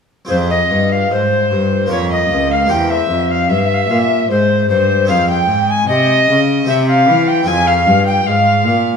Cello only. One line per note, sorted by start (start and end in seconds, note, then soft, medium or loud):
0.29 0.67 F2 medium
0.71 1.10 G2 medium
1.11 1.50 G#2 medium
1.52 1.91 G2 medium
1.92 2.30 F2 medium
2.30 2.69 C#2 medium
2.71 3.09 E2 medium
3.10 3.51 F2 medium
3.50 3.89 G2 medium
3.89 4.28 A#2 medium
4.29 4.68 G#2 medium
4.69 5.10 G2 medium
5.08 5.47 F2 medium
5.48 5.87 G#2 medium
5.88 6.27 C3 medium
6.27 6.66 C#3 medium
6.67 7.09 C3 medium
7.08 7.47 E3 medium
7.47 7.88 F2 medium
7.86 8.25 G2 medium
8.26 8.67 G#2 medium
8.65 8.97 A#2 medium